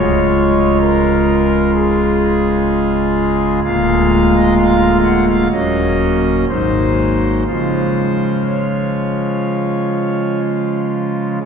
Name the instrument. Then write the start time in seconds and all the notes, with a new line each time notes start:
pipe organ
Already playing: C#1 C#2 G#3 F4 C#5
0.80 A#4
1.74 G#4
3.63 D1 D2 G#3 A#3 F4 F5
4.34 D#5
4.57 F5
5.04 F#5
5.28 F5
5.52 D#1 D#2 F#3 A#3 C#4 D#5
6.48 G#1 G#2 F#3 A#3 D#4 C5
7.46 C#3 F3 G#3 F4 C5
8.47 C#5